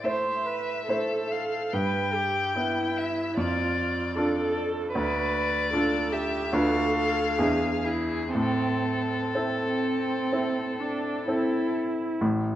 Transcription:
Already playing: grand piano A2 A3 E4 C5
0.03 grand piano A3 E4 C5, viola C5, violin E5
0.45 viola B4
0.87 grand piano A3 E4 C5, viola A4
1.31 violin F5
1.73 grand piano G2, viola B4, violin G5
2.14 viola G4
2.55 grand piano B3 E4 B4, viola E4
2.97 violin E5
3.36 grand piano F2, viola F4, violin D5
4.15 grand piano D4 F4 A4, viola A4
4.93 grand piano D2, viola B4, violin D5
5.73 grand piano D4 F4 A4, viola A4
6.12 viola G4, violin E5
6.52 grand piano D2 D4 F4 B4, viola A4, violin F5
7.38 grand piano E2 D4 E4 G#4, viola G#4
7.85 viola E4, violin G#4
8.33 grand piano A2, viola C4, violin A4
9.35 grand piano C4 E4 A4, viola C4
10.33 grand piano C4 E4 A4
10.80 viola D4
11.28 grand piano C4 E4 A4, viola E4
12.21 grand piano A1 A2

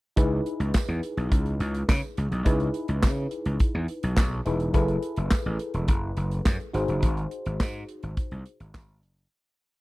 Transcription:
0.16 slap bass C#2, fm electric piano D#4 E4 G#4 B4, kick, closed hi-hat
0.46 closed hi-hat
0.60 slap bass C#2, closed hi-hat
0.74 kick, snare, clap, tambourine
0.88 slap bass E2, closed hi-hat
1.03 closed hi-hat
1.17 slap bass B1, closed hi-hat
1.32 slap bass C#2, kick, closed hi-hat
1.46 closed hi-hat
1.60 slap bass C#2, closed hi-hat
1.75 closed hi-hat
1.89 slap bass C#3, kick, snare, clap, tambourine
2.17 slap bass C#2, closed hi-hat
2.32 slap bass B1, closed hi-hat
2.45 slap bass C#2, fm electric piano D#4 E4 G#4 B4, kick, closed hi-hat
2.60 closed hi-hat
2.74 closed hi-hat
2.88 slap bass C#2, closed hi-hat
3.03 slap bass C#3, kick, snare, clap, tambourine
3.31 closed hi-hat
3.45 slap bass C#2, closed hi-hat
3.60 kick, closed hi-hat
3.75 slap bass E2
3.88 closed hi-hat
4.03 slap bass B1, closed hi-hat
4.17 slap bass B1, kick, snare, clap, tambourine
4.46 slap bass E1, fm electric piano D#4 E4 G#4 B4, closed hi-hat
4.60 closed hi-hat
4.74 slap bass F#1, fm electric piano E4 G#4 A4 B4, kick, closed hi-hat
4.88 closed hi-hat
5.03 closed hi-hat
5.16 slap bass F#1, closed hi-hat
5.31 kick, snare, clap, tambourine
5.46 slap bass A1
5.59 closed hi-hat
5.74 slap bass E1, closed hi-hat
5.88 slap bass F#1, kick, closed hi-hat
6.17 slap bass F#1, closed hi-hat
6.31 closed hi-hat
6.45 slap bass F#2, kick, snare, clap, tambourine
6.60 closed hi-hat
6.73 slap bass G#1, fm electric piano D#4 F#4 G#4 C5, closed hi-hat
6.88 slap bass F#1, closed hi-hat
7.02 slap bass G#1, kick, closed hi-hat
7.17 closed hi-hat
7.31 closed hi-hat
7.46 slap bass G#1, closed hi-hat
7.60 slap bass G#2, kick, snare, clap, tambourine
7.89 closed hi-hat
8.03 slap bass G#1, closed hi-hat
8.17 kick, closed hi-hat
8.31 slap bass C2, closed hi-hat
8.46 closed hi-hat
8.60 slap bass G#1, closed hi-hat
8.74 slap bass G#1, kick, snare, clap, tambourine
9.03 slap bass F#1, closed hi-hat
9.17 closed hi-hat

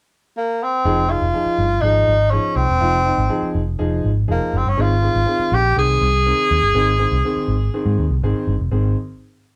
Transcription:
0.37 tenor saxophone A#3
0.63 tenor saxophone C4
0.85 picked electric bass F1, grand piano F3 D#4 G#4
1.09 grand piano F3 D#4 G#4, tenor saxophone F4
1.22 picked electric bass F1
1.34 grand piano F3 D#4 G#4
1.46 muted picked electric bass stroke
1.58 picked electric bass G1
1.81 picked electric bass G#1, grand piano F3 D#4 G#4, tenor saxophone D#4
2.07 picked electric bass G#1
2.31 grand piano F3 D#4 G#4, tenor saxophone C#4
2.56 picked electric bass C2, tenor saxophone C4
2.69 picked electric bass E1
2.81 picked electric bass F1, grand piano F3 D#4 F4
3.05 grand piano F3 D#4 F4
3.18 picked electric bass G#1
3.30 grand piano F3 D#4 G#4
3.42 muted picked electric bass stroke
3.55 picked electric bass F1
3.79 picked electric bass F1, grand piano F3 D#4 G#4
4.04 picked electric bass G#1
4.28 picked electric bass F1, grand piano F3 D#4 G#4, tenor saxophone A#3
4.53 picked electric bass F#1, tenor saxophone C4
4.66 picked electric bass G1, tenor saxophone C#4
4.77 picked electric bass G#1, grand piano D#3 C4 G#4
4.81 tenor saxophone F4
5.02 grand piano D#3 C4 G#4
5.15 picked electric bass G#1
5.26 grand piano D#3 C4 G#4
5.39 muted picked electric bass stroke
5.52 picked electric bass A#1, tenor saxophone G4
5.76 picked electric bass C2, grand piano D#3 C4 G#4, tenor saxophone G#4
6.01 picked electric bass C2
6.26 grand piano D#3 C4 A#4
6.51 picked electric bass D#2
6.62 picked electric bass G1
6.74 picked electric bass G#1, grand piano D#3 C4 G#4
6.99 grand piano D#3 C4 G#4
7.12 picked electric bass C2
7.25 grand piano D#3 C4 G#4
7.37 muted picked electric bass stroke
7.48 picked electric bass G#1
7.74 grand piano D#3 C4 G#4
7.86 picked electric bass G#2
7.99 picked electric bass D#2
8.10 picked electric bass C2
8.22 picked electric bass G#1, grand piano D#3 C4 G#4
8.47 picked electric bass G1
8.60 picked electric bass F1
8.71 picked electric bass G#1, grand piano D#3 C4 G#4

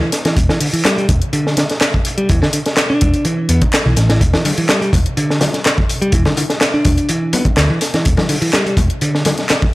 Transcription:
0.01 picked electric bass E3
0.12 snare, closed hi-hat
0.25 picked electric bass E3, snare, closed hi-hat
0.37 picked electric bass E1, kick, closed hi-hat
0.49 picked electric bass E3, snare
0.61 picked electric bass D3, closed hi-hat, open hi-hat
0.73 picked electric bass E3, closed hi-hat
0.85 picked electric bass G3, snare, clap, closed hi-hat
0.98 picked electric bass G3, closed hi-hat
1.09 picked electric bass E1, kick, closed hi-hat
1.22 closed hi-hat
1.33 picked electric bass D3, closed hi-hat
1.47 snare
1.57 picked electric bass D3, snare, closed hi-hat
1.70 snare, closed hi-hat
1.81 snare, clap, closed hi-hat
1.94 kick
2.05 closed hi-hat
2.06 closed hi-hat
2.18 picked electric bass G3, closed hi-hat
2.29 picked electric bass E1 E3, kick, closed hi-hat
2.42 picked electric bass D3, snare
2.53 picked electric bass D3, closed hi-hat
2.66 snare, closed hi-hat
2.77 snare, clap, closed hi-hat
2.90 picked electric bass D4
3.01 picked electric bass E1, kick, closed hi-hat
3.14 closed hi-hat
3.25 picked electric bass E3, closed hi-hat
3.49 picked electric bass E2 B3, closed hi-hat
3.62 kick, closed hi-hat
3.73 snare, clap, closed hi-hat
3.86 picked electric bass B1 E3
3.96 picked electric bass A1, snare, closed hi-hat
4.09 picked electric bass E3, snare, closed hi-hat
4.21 picked electric bass E1, kick, closed hi-hat
4.33 picked electric bass E3, snare, muted conga, high conga
4.45 picked electric bass D3, open hi-hat, muted conga, high conga
4.58 picked electric bass E3, closed hi-hat
4.69 picked electric bass G3, snare, clap, closed hi-hat
4.81 picked electric bass G3, closed hi-hat
4.93 picked electric bass E1, kick, closed hi-hat, open hi-hat, muted conga
5.06 closed hi-hat
5.17 picked electric bass D3, closed hi-hat
5.30 snare
5.41 picked electric bass D3, snare, closed hi-hat, open hi-hat, high conga, low conga
5.54 snare, closed hi-hat
5.65 snare, clap, closed hi-hat
5.78 kick
5.89 closed hi-hat, open hi-hat
6.02 picked electric bass G3, closed hi-hat
6.12 picked electric bass E1 E3, kick, closed hi-hat
6.25 picked electric bass D3, snare, muted conga, high conga
6.37 picked electric bass D3, closed hi-hat, open hi-hat, muted conga, high conga
6.50 snare, closed hi-hat
6.61 snare, clap, closed hi-hat
6.74 picked electric bass D4
6.85 picked electric bass E1, kick, closed hi-hat, open hi-hat, muted conga
6.97 closed hi-hat
7.09 picked electric bass E3, closed hi-hat
7.33 picked electric bass B3, closed hi-hat, open hi-hat, high conga, low conga
7.45 muted picked electric bass stroke, kick, closed hi-hat
7.57 picked electric bass D2, snare, clap, closed hi-hat
7.70 picked electric bass E3
7.81 snare, closed hi-hat, open hi-hat
7.94 picked electric bass E3, snare, closed hi-hat
8.05 picked electric bass E1, kick, closed hi-hat
8.17 picked electric bass E3, snare, muted conga, high conga
8.29 picked electric bass D3, open hi-hat, muted conga, high conga
8.42 picked electric bass E3, closed hi-hat
8.53 picked electric bass G3, snare, clap, closed hi-hat
8.66 picked electric bass G3, closed hi-hat
8.77 picked electric bass E1, kick, closed hi-hat, open hi-hat, muted conga
8.90 closed hi-hat
9.01 picked electric bass D3, closed hi-hat
9.15 snare
9.25 picked electric bass D3, snare, closed hi-hat, open hi-hat, high conga, low conga
9.38 snare, closed hi-hat
9.49 snare, clap, closed hi-hat
9.62 kick

